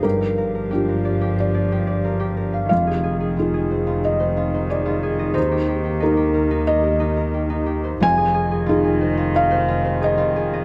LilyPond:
<<
  \new Staff \with { instrumentName = "Harp" } { \time 4/4 \key f \dorian \tempo 4 = 90 <f' g'>16 bes'16 bes'16 bes'16 g'16 bes'16 d''16 g'8 d''16 g'16 d''16 bes'16 g'16 bes'16 f''16 | f'16 aes'16 aes'16 aes'16 f'16 aes'16 c''16 f'8 c''16 f'16 c''16 aes'16 f'16 aes'16 ees''16 | ees'16 g'16 g'16 g'16 ees'16 g'16 bes'16 ees'8 bes'16 ees'16 bes'16 g'16 ees'16 g'16 c''16 | f'16 aes'16 aes'16 aes'16 f'16 aes'16 c''16 f'8 c''16 f'16 c''16 aes'16 f'16 aes'16 ees''16 | }
  \new Staff \with { instrumentName = "Felt piano" } { \time 4/4 \key f \dorian << { bes'2 d''2 | f''2 ees''4 d''4 | c''2 ees''2 | aes''2 f''4 ees''4 | } \\ { g,4 <d' f' g'>2. | f,4 <ees' f' aes'>2. | ees,4 <ees' g' bes'>2. | f,4 <ees' f' aes'>2. | } >> }
  \new Staff \with { instrumentName = "Ambient pad" } { \time 4/4 \key f \dorian << { f''1 | ees'1~ | ees'1 | ees''1 | } \\ { <d' g'>1 | <c' aes'>1 | <bes g'>1 | <c' f'>1 | } >> }
  \new Staff \with { instrumentName = "Cello" } { \clef bass \time 4/4 \key f \dorian f1 | ees1~ | ees1 | ees1 | }
  \new Staff \with { instrumentName = "Double bass" } { \clef bass \time 4/4 \key f \dorian g,,1 | f,,1 | ees,1 | f,,1 | }
>>